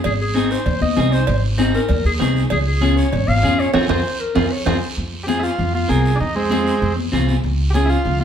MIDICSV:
0, 0, Header, 1, 6, 480
1, 0, Start_track
1, 0, Key_signature, -4, "minor"
1, 0, Tempo, 307850
1, 78, Time_signature, 4, 2, 24, 8
1, 12851, End_track
2, 0, Start_track
2, 0, Title_t, "Clarinet"
2, 0, Program_c, 0, 71
2, 83, Note_on_c, 0, 68, 83
2, 190, Note_off_c, 0, 68, 0
2, 332, Note_on_c, 0, 68, 83
2, 801, Note_on_c, 0, 72, 91
2, 824, Note_off_c, 0, 68, 0
2, 1263, Note_off_c, 0, 72, 0
2, 1273, Note_on_c, 0, 75, 102
2, 1753, Note_on_c, 0, 72, 95
2, 1777, Note_off_c, 0, 75, 0
2, 1982, Note_off_c, 0, 72, 0
2, 1992, Note_on_c, 0, 72, 82
2, 2218, Note_off_c, 0, 72, 0
2, 2722, Note_on_c, 0, 70, 91
2, 3166, Note_off_c, 0, 70, 0
2, 3209, Note_on_c, 0, 68, 80
2, 3315, Note_off_c, 0, 68, 0
2, 3452, Note_on_c, 0, 68, 78
2, 3780, Note_off_c, 0, 68, 0
2, 3919, Note_on_c, 0, 68, 97
2, 4027, Note_off_c, 0, 68, 0
2, 4160, Note_on_c, 0, 68, 90
2, 4626, Note_on_c, 0, 73, 105
2, 4649, Note_off_c, 0, 68, 0
2, 5113, Note_on_c, 0, 77, 121
2, 5136, Note_off_c, 0, 73, 0
2, 5602, Note_on_c, 0, 73, 111
2, 5626, Note_off_c, 0, 77, 0
2, 5809, Note_off_c, 0, 73, 0
2, 5818, Note_on_c, 0, 73, 99
2, 5930, Note_off_c, 0, 73, 0
2, 6072, Note_on_c, 0, 72, 98
2, 6547, Note_on_c, 0, 70, 103
2, 6570, Note_off_c, 0, 72, 0
2, 7036, Note_on_c, 0, 73, 88
2, 7059, Note_off_c, 0, 70, 0
2, 7244, Note_off_c, 0, 73, 0
2, 7253, Note_on_c, 0, 72, 80
2, 7598, Note_off_c, 0, 72, 0
2, 12851, End_track
3, 0, Start_track
3, 0, Title_t, "Clean electric guitar"
3, 0, Program_c, 1, 27
3, 537, Note_on_c, 1, 60, 75
3, 545, Note_on_c, 1, 63, 63
3, 556, Note_on_c, 1, 68, 72
3, 884, Note_off_c, 1, 60, 0
3, 889, Note_off_c, 1, 63, 0
3, 891, Note_off_c, 1, 68, 0
3, 1506, Note_on_c, 1, 60, 68
3, 1512, Note_on_c, 1, 63, 70
3, 1520, Note_on_c, 1, 68, 82
3, 1848, Note_off_c, 1, 60, 0
3, 1851, Note_off_c, 1, 63, 0
3, 1855, Note_off_c, 1, 68, 0
3, 2462, Note_on_c, 1, 60, 88
3, 2467, Note_on_c, 1, 63, 82
3, 2479, Note_on_c, 1, 68, 83
3, 2806, Note_off_c, 1, 60, 0
3, 2810, Note_off_c, 1, 63, 0
3, 2812, Note_off_c, 1, 68, 0
3, 3416, Note_on_c, 1, 60, 69
3, 3428, Note_on_c, 1, 63, 52
3, 3428, Note_on_c, 1, 68, 78
3, 3764, Note_off_c, 1, 60, 0
3, 3767, Note_off_c, 1, 63, 0
3, 3769, Note_off_c, 1, 68, 0
3, 4386, Note_on_c, 1, 61, 81
3, 4394, Note_on_c, 1, 68, 82
3, 4396, Note_on_c, 1, 65, 59
3, 4728, Note_off_c, 1, 61, 0
3, 4730, Note_off_c, 1, 65, 0
3, 4732, Note_off_c, 1, 68, 0
3, 5352, Note_on_c, 1, 61, 71
3, 5363, Note_on_c, 1, 65, 64
3, 5372, Note_on_c, 1, 68, 86
3, 5692, Note_off_c, 1, 61, 0
3, 5694, Note_off_c, 1, 65, 0
3, 5700, Note_off_c, 1, 68, 0
3, 5832, Note_on_c, 1, 60, 109
3, 5840, Note_on_c, 1, 65, 94
3, 5843, Note_on_c, 1, 68, 87
3, 5989, Note_off_c, 1, 68, 0
3, 5990, Note_off_c, 1, 60, 0
3, 5991, Note_off_c, 1, 65, 0
3, 6081, Note_on_c, 1, 65, 93
3, 6081, Note_on_c, 1, 68, 79
3, 6084, Note_on_c, 1, 60, 95
3, 6230, Note_off_c, 1, 68, 0
3, 6233, Note_off_c, 1, 65, 0
3, 6235, Note_off_c, 1, 60, 0
3, 6780, Note_on_c, 1, 60, 84
3, 6789, Note_on_c, 1, 65, 89
3, 6792, Note_on_c, 1, 68, 84
3, 6941, Note_off_c, 1, 60, 0
3, 6944, Note_off_c, 1, 68, 0
3, 6945, Note_off_c, 1, 65, 0
3, 7262, Note_on_c, 1, 60, 88
3, 7273, Note_on_c, 1, 65, 90
3, 7281, Note_on_c, 1, 68, 86
3, 7424, Note_off_c, 1, 60, 0
3, 7427, Note_off_c, 1, 65, 0
3, 7427, Note_off_c, 1, 68, 0
3, 8216, Note_on_c, 1, 60, 69
3, 8226, Note_on_c, 1, 65, 62
3, 8234, Note_on_c, 1, 68, 78
3, 8561, Note_off_c, 1, 60, 0
3, 8567, Note_off_c, 1, 65, 0
3, 8571, Note_off_c, 1, 68, 0
3, 9171, Note_on_c, 1, 60, 69
3, 9177, Note_on_c, 1, 65, 63
3, 9183, Note_on_c, 1, 70, 70
3, 9519, Note_off_c, 1, 60, 0
3, 9523, Note_off_c, 1, 65, 0
3, 9523, Note_off_c, 1, 70, 0
3, 10135, Note_on_c, 1, 60, 68
3, 10148, Note_on_c, 1, 68, 80
3, 10149, Note_on_c, 1, 65, 54
3, 10483, Note_off_c, 1, 60, 0
3, 10485, Note_off_c, 1, 65, 0
3, 10487, Note_off_c, 1, 68, 0
3, 11100, Note_on_c, 1, 60, 84
3, 11113, Note_on_c, 1, 65, 75
3, 11123, Note_on_c, 1, 68, 95
3, 11443, Note_off_c, 1, 60, 0
3, 11450, Note_off_c, 1, 65, 0
3, 11455, Note_off_c, 1, 68, 0
3, 12070, Note_on_c, 1, 61, 73
3, 12074, Note_on_c, 1, 65, 61
3, 12092, Note_on_c, 1, 68, 74
3, 12409, Note_off_c, 1, 61, 0
3, 12413, Note_off_c, 1, 65, 0
3, 12416, Note_off_c, 1, 68, 0
3, 12851, End_track
4, 0, Start_track
4, 0, Title_t, "Transistor combo organ"
4, 0, Program_c, 2, 18
4, 8163, Note_on_c, 2, 67, 68
4, 8201, Note_off_c, 2, 67, 0
4, 8240, Note_on_c, 2, 68, 100
4, 8404, Note_on_c, 2, 64, 61
4, 8441, Note_off_c, 2, 64, 0
4, 8471, Note_off_c, 2, 68, 0
4, 8471, Note_on_c, 2, 65, 88
4, 8938, Note_off_c, 2, 65, 0
4, 8959, Note_on_c, 2, 65, 85
4, 9184, Note_on_c, 2, 68, 83
4, 9190, Note_off_c, 2, 65, 0
4, 9595, Note_on_c, 2, 62, 56
4, 9634, Note_off_c, 2, 62, 0
4, 9655, Note_off_c, 2, 68, 0
4, 9669, Note_on_c, 2, 63, 83
4, 9905, Note_off_c, 2, 63, 0
4, 9905, Note_on_c, 2, 56, 67
4, 9920, Note_on_c, 2, 60, 79
4, 10808, Note_off_c, 2, 56, 0
4, 10849, Note_off_c, 2, 60, 0
4, 12010, Note_on_c, 2, 67, 71
4, 12046, Note_off_c, 2, 67, 0
4, 12072, Note_on_c, 2, 68, 102
4, 12247, Note_on_c, 2, 64, 68
4, 12283, Note_off_c, 2, 64, 0
4, 12306, Note_off_c, 2, 68, 0
4, 12310, Note_on_c, 2, 65, 95
4, 12774, Note_off_c, 2, 65, 0
4, 12793, Note_on_c, 2, 65, 88
4, 12851, Note_off_c, 2, 65, 0
4, 12851, End_track
5, 0, Start_track
5, 0, Title_t, "Upright bass"
5, 0, Program_c, 3, 32
5, 76, Note_on_c, 3, 32, 91
5, 845, Note_off_c, 3, 32, 0
5, 1032, Note_on_c, 3, 39, 104
5, 1226, Note_off_c, 3, 39, 0
5, 1269, Note_on_c, 3, 39, 91
5, 1465, Note_off_c, 3, 39, 0
5, 1516, Note_on_c, 3, 36, 84
5, 1901, Note_off_c, 3, 36, 0
5, 1994, Note_on_c, 3, 32, 94
5, 2763, Note_off_c, 3, 32, 0
5, 2956, Note_on_c, 3, 39, 107
5, 3149, Note_off_c, 3, 39, 0
5, 3192, Note_on_c, 3, 39, 97
5, 3387, Note_off_c, 3, 39, 0
5, 3432, Note_on_c, 3, 36, 88
5, 3818, Note_off_c, 3, 36, 0
5, 3916, Note_on_c, 3, 37, 96
5, 4684, Note_off_c, 3, 37, 0
5, 4875, Note_on_c, 3, 32, 105
5, 5068, Note_off_c, 3, 32, 0
5, 5113, Note_on_c, 3, 32, 96
5, 5307, Note_off_c, 3, 32, 0
5, 5351, Note_on_c, 3, 41, 94
5, 5737, Note_off_c, 3, 41, 0
5, 5837, Note_on_c, 3, 41, 92
5, 6015, Note_off_c, 3, 41, 0
5, 6079, Note_on_c, 3, 41, 86
5, 6257, Note_off_c, 3, 41, 0
5, 6800, Note_on_c, 3, 41, 94
5, 6977, Note_off_c, 3, 41, 0
5, 7274, Note_on_c, 3, 41, 89
5, 7453, Note_off_c, 3, 41, 0
5, 7753, Note_on_c, 3, 41, 92
5, 8522, Note_off_c, 3, 41, 0
5, 8709, Note_on_c, 3, 41, 96
5, 9095, Note_off_c, 3, 41, 0
5, 9192, Note_on_c, 3, 36, 88
5, 9577, Note_off_c, 3, 36, 0
5, 9670, Note_on_c, 3, 41, 90
5, 10440, Note_off_c, 3, 41, 0
5, 10633, Note_on_c, 3, 41, 100
5, 11018, Note_off_c, 3, 41, 0
5, 11122, Note_on_c, 3, 36, 88
5, 11503, Note_off_c, 3, 36, 0
5, 11603, Note_on_c, 3, 37, 94
5, 12368, Note_off_c, 3, 37, 0
5, 12560, Note_on_c, 3, 37, 100
5, 12851, Note_off_c, 3, 37, 0
5, 12851, End_track
6, 0, Start_track
6, 0, Title_t, "Drums"
6, 65, Note_on_c, 9, 56, 104
6, 73, Note_on_c, 9, 64, 70
6, 85, Note_on_c, 9, 74, 71
6, 221, Note_off_c, 9, 56, 0
6, 229, Note_off_c, 9, 64, 0
6, 241, Note_off_c, 9, 74, 0
6, 554, Note_on_c, 9, 73, 72
6, 556, Note_on_c, 9, 63, 86
6, 710, Note_off_c, 9, 73, 0
6, 711, Note_off_c, 9, 63, 0
6, 793, Note_on_c, 9, 73, 72
6, 949, Note_off_c, 9, 73, 0
6, 1026, Note_on_c, 9, 56, 74
6, 1034, Note_on_c, 9, 64, 86
6, 1038, Note_on_c, 9, 74, 72
6, 1182, Note_off_c, 9, 56, 0
6, 1190, Note_off_c, 9, 64, 0
6, 1194, Note_off_c, 9, 74, 0
6, 1269, Note_on_c, 9, 63, 72
6, 1425, Note_off_c, 9, 63, 0
6, 1504, Note_on_c, 9, 66, 66
6, 1508, Note_on_c, 9, 63, 87
6, 1508, Note_on_c, 9, 64, 73
6, 1510, Note_on_c, 9, 73, 73
6, 1660, Note_off_c, 9, 66, 0
6, 1664, Note_off_c, 9, 63, 0
6, 1664, Note_off_c, 9, 64, 0
6, 1666, Note_off_c, 9, 73, 0
6, 1751, Note_on_c, 9, 73, 66
6, 1907, Note_off_c, 9, 73, 0
6, 1983, Note_on_c, 9, 56, 105
6, 1989, Note_on_c, 9, 64, 72
6, 1996, Note_on_c, 9, 74, 73
6, 2138, Note_off_c, 9, 56, 0
6, 2145, Note_off_c, 9, 64, 0
6, 2152, Note_off_c, 9, 74, 0
6, 2462, Note_on_c, 9, 63, 90
6, 2467, Note_on_c, 9, 73, 76
6, 2618, Note_off_c, 9, 63, 0
6, 2623, Note_off_c, 9, 73, 0
6, 2716, Note_on_c, 9, 73, 76
6, 2872, Note_off_c, 9, 73, 0
6, 2941, Note_on_c, 9, 56, 78
6, 2947, Note_on_c, 9, 64, 88
6, 2956, Note_on_c, 9, 74, 75
6, 3097, Note_off_c, 9, 56, 0
6, 3103, Note_off_c, 9, 64, 0
6, 3112, Note_off_c, 9, 74, 0
6, 3424, Note_on_c, 9, 66, 73
6, 3428, Note_on_c, 9, 63, 80
6, 3428, Note_on_c, 9, 64, 69
6, 3439, Note_on_c, 9, 73, 73
6, 3580, Note_off_c, 9, 66, 0
6, 3584, Note_off_c, 9, 63, 0
6, 3584, Note_off_c, 9, 64, 0
6, 3595, Note_off_c, 9, 73, 0
6, 3684, Note_on_c, 9, 73, 61
6, 3840, Note_off_c, 9, 73, 0
6, 3901, Note_on_c, 9, 56, 108
6, 3915, Note_on_c, 9, 64, 68
6, 3918, Note_on_c, 9, 74, 70
6, 4057, Note_off_c, 9, 56, 0
6, 4071, Note_off_c, 9, 64, 0
6, 4074, Note_off_c, 9, 74, 0
6, 4391, Note_on_c, 9, 63, 91
6, 4410, Note_on_c, 9, 73, 69
6, 4547, Note_off_c, 9, 63, 0
6, 4566, Note_off_c, 9, 73, 0
6, 4638, Note_on_c, 9, 73, 70
6, 4794, Note_off_c, 9, 73, 0
6, 4868, Note_on_c, 9, 64, 83
6, 4874, Note_on_c, 9, 56, 81
6, 4890, Note_on_c, 9, 74, 76
6, 5024, Note_off_c, 9, 64, 0
6, 5030, Note_off_c, 9, 56, 0
6, 5046, Note_off_c, 9, 74, 0
6, 5116, Note_on_c, 9, 63, 73
6, 5272, Note_off_c, 9, 63, 0
6, 5353, Note_on_c, 9, 63, 81
6, 5353, Note_on_c, 9, 64, 76
6, 5369, Note_on_c, 9, 73, 73
6, 5509, Note_off_c, 9, 63, 0
6, 5509, Note_off_c, 9, 64, 0
6, 5525, Note_off_c, 9, 73, 0
6, 5601, Note_on_c, 9, 73, 66
6, 5757, Note_off_c, 9, 73, 0
6, 5825, Note_on_c, 9, 65, 100
6, 5835, Note_on_c, 9, 64, 94
6, 5839, Note_on_c, 9, 74, 97
6, 5981, Note_off_c, 9, 65, 0
6, 5990, Note_off_c, 9, 64, 0
6, 5995, Note_off_c, 9, 74, 0
6, 6068, Note_on_c, 9, 65, 107
6, 6077, Note_on_c, 9, 64, 96
6, 6082, Note_on_c, 9, 74, 97
6, 6224, Note_off_c, 9, 65, 0
6, 6232, Note_off_c, 9, 64, 0
6, 6238, Note_off_c, 9, 74, 0
6, 6791, Note_on_c, 9, 65, 95
6, 6793, Note_on_c, 9, 64, 99
6, 6803, Note_on_c, 9, 74, 96
6, 6947, Note_off_c, 9, 65, 0
6, 6949, Note_off_c, 9, 64, 0
6, 6959, Note_off_c, 9, 74, 0
6, 7270, Note_on_c, 9, 65, 94
6, 7280, Note_on_c, 9, 74, 94
6, 7285, Note_on_c, 9, 64, 99
6, 7426, Note_off_c, 9, 65, 0
6, 7436, Note_off_c, 9, 74, 0
6, 7441, Note_off_c, 9, 64, 0
6, 7755, Note_on_c, 9, 74, 67
6, 7911, Note_off_c, 9, 74, 0
6, 7999, Note_on_c, 9, 63, 32
6, 8155, Note_off_c, 9, 63, 0
6, 8234, Note_on_c, 9, 73, 70
6, 8241, Note_on_c, 9, 63, 100
6, 8389, Note_off_c, 9, 73, 0
6, 8397, Note_off_c, 9, 63, 0
6, 8474, Note_on_c, 9, 73, 62
6, 8630, Note_off_c, 9, 73, 0
6, 8718, Note_on_c, 9, 63, 33
6, 8718, Note_on_c, 9, 64, 77
6, 8719, Note_on_c, 9, 74, 70
6, 8874, Note_off_c, 9, 63, 0
6, 8874, Note_off_c, 9, 64, 0
6, 8875, Note_off_c, 9, 74, 0
6, 8957, Note_on_c, 9, 63, 68
6, 9113, Note_off_c, 9, 63, 0
6, 9199, Note_on_c, 9, 63, 76
6, 9201, Note_on_c, 9, 73, 66
6, 9355, Note_off_c, 9, 63, 0
6, 9357, Note_off_c, 9, 73, 0
6, 9439, Note_on_c, 9, 73, 63
6, 9595, Note_off_c, 9, 73, 0
6, 9679, Note_on_c, 9, 74, 66
6, 9685, Note_on_c, 9, 64, 63
6, 9835, Note_off_c, 9, 74, 0
6, 9841, Note_off_c, 9, 64, 0
6, 9931, Note_on_c, 9, 63, 31
6, 10087, Note_off_c, 9, 63, 0
6, 10166, Note_on_c, 9, 63, 98
6, 10167, Note_on_c, 9, 73, 71
6, 10321, Note_off_c, 9, 63, 0
6, 10323, Note_off_c, 9, 73, 0
6, 10395, Note_on_c, 9, 73, 70
6, 10551, Note_off_c, 9, 73, 0
6, 10641, Note_on_c, 9, 74, 73
6, 10647, Note_on_c, 9, 63, 35
6, 10647, Note_on_c, 9, 64, 79
6, 10797, Note_off_c, 9, 74, 0
6, 10803, Note_off_c, 9, 63, 0
6, 10803, Note_off_c, 9, 64, 0
6, 10888, Note_on_c, 9, 63, 69
6, 11044, Note_off_c, 9, 63, 0
6, 11121, Note_on_c, 9, 73, 67
6, 11125, Note_on_c, 9, 63, 78
6, 11125, Note_on_c, 9, 64, 73
6, 11276, Note_off_c, 9, 73, 0
6, 11281, Note_off_c, 9, 63, 0
6, 11281, Note_off_c, 9, 64, 0
6, 11358, Note_on_c, 9, 73, 59
6, 11361, Note_on_c, 9, 63, 73
6, 11514, Note_off_c, 9, 73, 0
6, 11517, Note_off_c, 9, 63, 0
6, 11594, Note_on_c, 9, 74, 71
6, 11750, Note_off_c, 9, 74, 0
6, 11848, Note_on_c, 9, 63, 33
6, 12004, Note_off_c, 9, 63, 0
6, 12078, Note_on_c, 9, 73, 69
6, 12088, Note_on_c, 9, 63, 98
6, 12234, Note_off_c, 9, 73, 0
6, 12244, Note_off_c, 9, 63, 0
6, 12308, Note_on_c, 9, 73, 71
6, 12464, Note_off_c, 9, 73, 0
6, 12549, Note_on_c, 9, 74, 69
6, 12564, Note_on_c, 9, 63, 34
6, 12564, Note_on_c, 9, 64, 77
6, 12705, Note_off_c, 9, 74, 0
6, 12719, Note_off_c, 9, 63, 0
6, 12719, Note_off_c, 9, 64, 0
6, 12796, Note_on_c, 9, 63, 69
6, 12851, Note_off_c, 9, 63, 0
6, 12851, End_track
0, 0, End_of_file